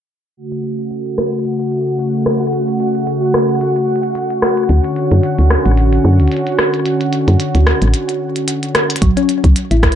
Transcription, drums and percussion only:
0.52 closed hi-hat
0.64 closed hi-hat
0.79 closed hi-hat
0.91 closed hi-hat
1.06 closed hi-hat
1.18 cross-stick, closed hi-hat
1.33 closed hi-hat
1.45 closed hi-hat
1.60 closed hi-hat
1.72 closed hi-hat
1.87 closed hi-hat
1.99 closed hi-hat
2.14 closed hi-hat
2.26 cross-stick, closed hi-hat
2.41 closed hi-hat
2.53 closed hi-hat
2.68 closed hi-hat
2.80 closed hi-hat
2.95 closed hi-hat
3.07 closed hi-hat
3.34 cross-stick, closed hi-hat
3.49 closed hi-hat
3.61 closed hi-hat
3.76 closed hi-hat
3.96 closed hi-hat
4.03 closed hi-hat
4.15 closed hi-hat
4.30 closed hi-hat
4.42 cross-stick, closed hi-hat
4.57 closed hi-hat
4.69 closed hi-hat
4.84 closed hi-hat
4.96 closed hi-hat
5.12 closed hi-hat
5.23 closed hi-hat
5.39 closed hi-hat
5.50 cross-stick, closed hi-hat
5.66 closed hi-hat
5.77 closed hi-hat
5.93 closed hi-hat
6.20 closed hi-hat
6.28 closed hi-hat
6.32 closed hi-hat
6.37 closed hi-hat
6.47 closed hi-hat
6.59 cross-stick
6.74 closed hi-hat
6.86 closed hi-hat
7.01 closed hi-hat
7.13 closed hi-hat
7.28 closed hi-hat
7.40 closed hi-hat
7.55 closed hi-hat
7.67 cross-stick
7.82 closed hi-hat
7.94 closed hi-hat
8.09 closed hi-hat
8.36 closed hi-hat
8.48 closed hi-hat
8.63 closed hi-hat
8.75 cross-stick, closed hi-hat
8.90 closed hi-hat
8.96 closed hi-hat
9.02 kick, closed hi-hat
9.17 closed hi-hat
9.29 closed hi-hat
9.44 kick, closed hi-hat
9.56 closed hi-hat
9.71 closed hi-hat
9.83 kick, cross-stick, closed hi-hat
9.92 closed hi-hat

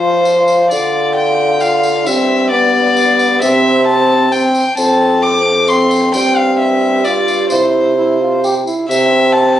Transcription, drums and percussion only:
0.25 tambourine
0.48 tambourine
0.71 tambourine
1.60 tambourine
1.83 tambourine
2.06 tambourine
2.97 tambourine
3.19 tambourine
3.42 tambourine
4.32 tambourine
4.55 tambourine
4.77 tambourine
5.68 tambourine
5.91 tambourine
6.14 tambourine
7.05 tambourine
7.28 tambourine
7.50 tambourine
8.44 tambourine
8.67 tambourine
8.91 tambourine

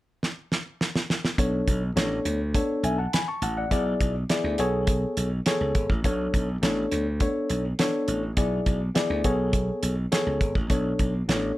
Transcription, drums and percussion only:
0.23 snare
0.52 snare
0.81 snare
0.96 snare
1.10 snare
1.25 snare
1.38 kick, closed hi-hat
1.68 kick, closed hi-hat
1.97 snare, closed hi-hat
2.25 closed hi-hat
2.55 kick, closed hi-hat
2.84 closed hi-hat
3.13 snare, closed hi-hat
3.42 closed hi-hat
3.71 kick, closed hi-hat
4.01 kick, closed hi-hat
4.30 snare, closed hi-hat
4.58 closed hi-hat
4.87 kick, closed hi-hat
5.17 closed hi-hat
5.46 snare, closed hi-hat
5.75 kick, closed hi-hat
5.90 kick
6.04 kick, closed hi-hat
6.34 kick, closed hi-hat
6.63 snare, closed hi-hat
6.92 closed hi-hat
7.20 kick, closed hi-hat
7.50 closed hi-hat
7.79 snare, closed hi-hat
8.08 closed hi-hat
8.37 kick, closed hi-hat
8.66 kick, closed hi-hat
8.95 snare, closed hi-hat
9.24 kick, closed hi-hat
9.53 kick, closed hi-hat
9.83 closed hi-hat
10.12 snare, closed hi-hat
10.41 kick, closed hi-hat
10.55 kick
10.70 kick, closed hi-hat
10.99 kick, closed hi-hat
11.29 snare, closed hi-hat

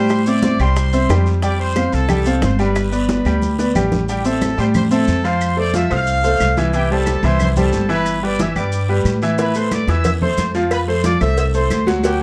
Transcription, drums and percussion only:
0.09 high bongo, high conga, long guiro, claves, maracas
0.26 high bongo, high conga, maracas
0.42 high bongo, high conga, short guiro, maracas
0.59 high conga, short guiro, claves, maracas
0.76 high bongo, high conga, long guiro, maracas
0.93 high bongo, high conga, maracas
1.09 high bongo, low bongo, high conga, short guiro, claves, maracas
1.26 high bongo, short guiro, maracas
1.42 high bongo, high conga, long guiro, maracas
1.59 high bongo, high conga
1.75 high bongo, high conga, short guiro, claves, maracas
1.92 high bongo, high conga, short guiro, maracas
2.09 high bongo, high conga, low conga, long guiro, claves, maracas
2.26 high bongo, maracas
2.42 high bongo, low bongo, high conga, short guiro, maracas
2.59 short guiro, maracas
2.76 high bongo, high conga, long guiro, claves, maracas
2.92 high bongo, high conga, maracas
3.09 high bongo, high conga, short guiro, maracas
3.25 high conga, short guiro, claves, maracas
3.42 high conga, long guiro, maracas
3.59 low bongo, maracas
3.75 low conga, short guiro, claves, maracas
3.92 low bongo, low conga, short guiro, maracas
4.08 high conga, long guiro, maracas
4.25 high conga, maracas
4.41 high conga, short guiro, claves, maracas
4.58 high conga, short guiro, maracas
4.74 high conga, low conga, long guiro, claves, maracas
4.91 high conga, maracas
5.07 high conga, short guiro, maracas
5.24 short guiro, maracas
5.41 high conga, long guiro, claves, maracas
5.58 high conga
5.74 high conga, short guiro, maracas
5.91 high conga, short guiro, claves, maracas
6.07 high conga, long guiro, maracas
6.24 high conga, maracas
6.40 high conga, short guiro, claves, maracas
6.57 high conga, short guiro, maracas
6.73 high conga, long guiro, maracas
6.91 high conga
7.06 high conga, short guiro, claves, maracas
7.23 high conga, short guiro, maracas
7.39 high conga, low conga, long guiro, claves, maracas
7.56 high conga, low conga, maracas
7.73 high conga, short guiro, maracas
7.89 short guiro, maracas
8.06 high conga, long guiro, claves, maracas
8.23 high conga
8.39 high conga, short guiro, maracas
8.56 high conga, short guiro, claves, maracas
8.72 high conga, long guiro, maracas
8.89 high conga
9.05 high conga, short guiro, claves, maracas
9.22 short guiro, maracas
9.38 cowbell, high conga, long guiro, maracas
9.55 high conga, maracas
9.71 cowbell, high conga, short guiro, claves, maracas
9.88 cowbell, high conga, short guiro, maracas
10.04 cowbell, high conga, low conga, long guiro, claves, maracas
10.22 high conga, low conga
10.37 cowbell, high conga, short guiro, maracas
10.55 short guiro, maracas
10.71 cowbell, high conga, long guiro, claves, maracas
10.88 high conga
11.04 cowbell, high conga, short guiro, maracas
11.21 high conga, short guiro, claves, maracas
11.37 cowbell, high conga, long guiro, maracas
11.54 high conga, maracas
11.70 cowbell, high conga, short guiro, claves, maracas
11.87 cowbell, high conga, short guiro, maracas
12.04 cowbell, long guiro, maracas

